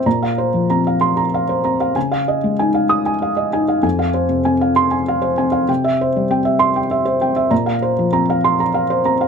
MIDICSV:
0, 0, Header, 1, 2, 480
1, 0, Start_track
1, 0, Key_signature, -5, "minor"
1, 0, Tempo, 630915
1, 41, Time_signature, 6, 3, 24, 8
1, 2920, Tempo, 611621
1, 7190, End_track
2, 0, Start_track
2, 0, Title_t, "Felt piano"
2, 0, Program_c, 0, 0
2, 0, Control_c, 0, 64, 127
2, 46, Note_on_c, 0, 46, 49
2, 47, Note_on_c, 0, 82, 43
2, 55, Control_c, 0, 64, 0
2, 171, Note_on_c, 0, 77, 46
2, 173, Control_c, 0, 64, 127
2, 241, Note_off_c, 0, 82, 0
2, 290, Note_on_c, 0, 72, 46
2, 364, Note_off_c, 0, 77, 0
2, 410, Note_on_c, 0, 53, 39
2, 483, Note_off_c, 0, 72, 0
2, 533, Note_on_c, 0, 82, 53
2, 538, Note_on_c, 0, 60, 41
2, 602, Note_off_c, 0, 53, 0
2, 661, Note_on_c, 0, 77, 42
2, 723, Note_off_c, 0, 82, 0
2, 768, Note_on_c, 0, 84, 60
2, 846, Note_off_c, 0, 77, 0
2, 890, Note_on_c, 0, 82, 40
2, 917, Note_off_c, 0, 60, 0
2, 960, Note_off_c, 0, 84, 0
2, 1022, Note_on_c, 0, 77, 48
2, 1081, Note_off_c, 0, 82, 0
2, 1134, Note_on_c, 0, 72, 45
2, 1207, Note_off_c, 0, 77, 0
2, 1251, Note_on_c, 0, 60, 40
2, 1251, Note_on_c, 0, 82, 42
2, 1323, Note_off_c, 0, 72, 0
2, 1372, Note_on_c, 0, 77, 48
2, 1441, Note_off_c, 0, 82, 0
2, 1459, Note_off_c, 0, 46, 0
2, 1483, Note_on_c, 0, 49, 48
2, 1489, Note_off_c, 0, 60, 0
2, 1489, Note_off_c, 0, 77, 0
2, 1490, Note_on_c, 0, 80, 48
2, 1503, Control_c, 0, 64, 0
2, 1605, Control_c, 0, 64, 127
2, 1609, Note_on_c, 0, 77, 49
2, 1680, Note_off_c, 0, 80, 0
2, 1735, Note_on_c, 0, 75, 49
2, 1800, Note_off_c, 0, 77, 0
2, 1855, Note_on_c, 0, 56, 43
2, 1923, Note_off_c, 0, 75, 0
2, 1973, Note_on_c, 0, 80, 52
2, 1977, Note_on_c, 0, 63, 44
2, 2043, Note_off_c, 0, 56, 0
2, 2088, Note_on_c, 0, 77, 44
2, 2162, Note_off_c, 0, 80, 0
2, 2202, Note_on_c, 0, 87, 65
2, 2279, Note_off_c, 0, 77, 0
2, 2328, Note_on_c, 0, 80, 47
2, 2356, Note_off_c, 0, 63, 0
2, 2397, Note_off_c, 0, 87, 0
2, 2450, Note_on_c, 0, 77, 45
2, 2519, Note_off_c, 0, 80, 0
2, 2561, Note_on_c, 0, 75, 47
2, 2639, Note_off_c, 0, 77, 0
2, 2686, Note_on_c, 0, 80, 47
2, 2687, Note_on_c, 0, 63, 44
2, 2753, Note_off_c, 0, 75, 0
2, 2803, Note_on_c, 0, 77, 48
2, 2873, Note_off_c, 0, 80, 0
2, 2887, Note_off_c, 0, 49, 0
2, 2912, Note_on_c, 0, 41, 49
2, 2914, Note_on_c, 0, 80, 45
2, 2919, Note_off_c, 0, 77, 0
2, 2920, Note_off_c, 0, 63, 0
2, 2933, Control_c, 0, 64, 0
2, 3038, Note_on_c, 0, 77, 47
2, 3047, Control_c, 0, 64, 127
2, 3108, Note_off_c, 0, 80, 0
2, 3156, Note_on_c, 0, 72, 45
2, 3230, Note_off_c, 0, 77, 0
2, 3276, Note_on_c, 0, 48, 42
2, 3349, Note_off_c, 0, 72, 0
2, 3401, Note_on_c, 0, 80, 54
2, 3404, Note_on_c, 0, 60, 47
2, 3470, Note_off_c, 0, 48, 0
2, 3529, Note_on_c, 0, 77, 46
2, 3593, Note_off_c, 0, 80, 0
2, 3644, Note_on_c, 0, 84, 69
2, 3719, Note_off_c, 0, 77, 0
2, 3763, Note_on_c, 0, 80, 47
2, 3790, Note_off_c, 0, 60, 0
2, 3838, Note_off_c, 0, 84, 0
2, 3898, Note_on_c, 0, 77, 50
2, 3958, Note_off_c, 0, 80, 0
2, 4001, Note_on_c, 0, 72, 50
2, 4087, Note_off_c, 0, 77, 0
2, 4129, Note_on_c, 0, 80, 47
2, 4133, Note_on_c, 0, 60, 45
2, 4199, Note_off_c, 0, 72, 0
2, 4239, Note_on_c, 0, 77, 54
2, 4323, Note_off_c, 0, 80, 0
2, 4337, Note_off_c, 0, 41, 0
2, 4366, Note_off_c, 0, 77, 0
2, 4369, Note_on_c, 0, 48, 57
2, 4370, Note_on_c, 0, 79, 47
2, 4374, Note_off_c, 0, 60, 0
2, 4386, Control_c, 0, 64, 0
2, 4494, Note_on_c, 0, 76, 51
2, 4507, Control_c, 0, 64, 127
2, 4563, Note_off_c, 0, 79, 0
2, 4627, Note_on_c, 0, 72, 49
2, 4684, Note_off_c, 0, 76, 0
2, 4745, Note_on_c, 0, 55, 44
2, 4809, Note_off_c, 0, 72, 0
2, 4857, Note_on_c, 0, 79, 50
2, 4858, Note_on_c, 0, 60, 49
2, 4926, Note_off_c, 0, 55, 0
2, 4970, Note_on_c, 0, 76, 53
2, 5042, Note_off_c, 0, 79, 0
2, 5083, Note_on_c, 0, 84, 72
2, 5158, Note_off_c, 0, 76, 0
2, 5212, Note_on_c, 0, 79, 48
2, 5233, Note_off_c, 0, 60, 0
2, 5275, Note_off_c, 0, 84, 0
2, 5330, Note_on_c, 0, 76, 47
2, 5401, Note_off_c, 0, 79, 0
2, 5444, Note_on_c, 0, 72, 53
2, 5520, Note_off_c, 0, 76, 0
2, 5568, Note_on_c, 0, 79, 50
2, 5572, Note_on_c, 0, 60, 47
2, 5636, Note_off_c, 0, 72, 0
2, 5685, Note_on_c, 0, 76, 52
2, 5758, Note_off_c, 0, 79, 0
2, 5771, Note_off_c, 0, 48, 0
2, 5798, Note_on_c, 0, 82, 53
2, 5801, Note_on_c, 0, 46, 52
2, 5804, Note_off_c, 0, 76, 0
2, 5808, Note_off_c, 0, 60, 0
2, 5817, Control_c, 0, 64, 0
2, 5921, Note_on_c, 0, 77, 49
2, 5925, Control_c, 0, 64, 127
2, 5993, Note_off_c, 0, 82, 0
2, 6048, Note_on_c, 0, 72, 52
2, 6115, Note_off_c, 0, 77, 0
2, 6177, Note_on_c, 0, 53, 44
2, 6238, Note_off_c, 0, 72, 0
2, 6287, Note_on_c, 0, 60, 56
2, 6287, Note_on_c, 0, 82, 56
2, 6362, Note_off_c, 0, 53, 0
2, 6419, Note_on_c, 0, 77, 51
2, 6476, Note_off_c, 0, 82, 0
2, 6535, Note_on_c, 0, 84, 72
2, 6601, Note_off_c, 0, 77, 0
2, 6658, Note_on_c, 0, 82, 51
2, 6666, Note_off_c, 0, 60, 0
2, 6718, Note_off_c, 0, 84, 0
2, 6769, Note_on_c, 0, 77, 51
2, 6840, Note_off_c, 0, 82, 0
2, 6893, Note_on_c, 0, 72, 52
2, 6955, Note_off_c, 0, 77, 0
2, 7009, Note_on_c, 0, 60, 43
2, 7013, Note_on_c, 0, 82, 50
2, 7077, Note_off_c, 0, 72, 0
2, 7135, Note_on_c, 0, 77, 51
2, 7190, Note_off_c, 0, 46, 0
2, 7190, Note_off_c, 0, 60, 0
2, 7190, Note_off_c, 0, 77, 0
2, 7190, Note_off_c, 0, 82, 0
2, 7190, End_track
0, 0, End_of_file